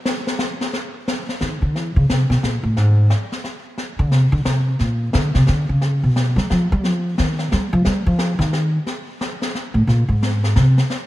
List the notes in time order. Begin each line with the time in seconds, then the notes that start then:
0.05 snare
0.27 snare
0.39 snare
0.61 snare
0.73 brush sweep, snare
1.08 snare
1.29 snare
1.41 D#3, snare
1.62 D3
1.76 E3, brush sweep, snare
1.96 C#3
2.10 C3, snare
2.30 B2, snare
2.43 A#2, snare
2.63 A2
2.77 G#2, brush sweep, snare
3.10 snare
3.32 snare
3.44 snare
3.78 brush sweep, snare
3.99 D3
4.11 C3, snare
4.32 D3
4.45 C3, snare
4.79 A#2, brush sweep, snare
5.13 D3, snare
5.34 C3, snare
5.47 D3, snare
5.69 C#3
5.81 brush sweep, snare
6.04 B2
6.16 snare
6.36 G3, snare
6.50 F3, snare
6.72 G3
6.84 F3, brush sweep, snare
7.18 D#3, snare
7.39 snare
7.52 G3, snare
7.73 F3
7.85 G3, brush sweep, snare
8.06 F3
8.19 snare
8.39 D#3, snare
8.53 snare
8.87 brush sweep, snare
9.21 snare
9.42 snare
9.55 snare
9.74 A2
9.87 A#2, brush sweep, snare
10.09 G#2
10.23 snare
10.44 snare
10.56 C3, snare
10.78 snare
10.90 brush sweep, snare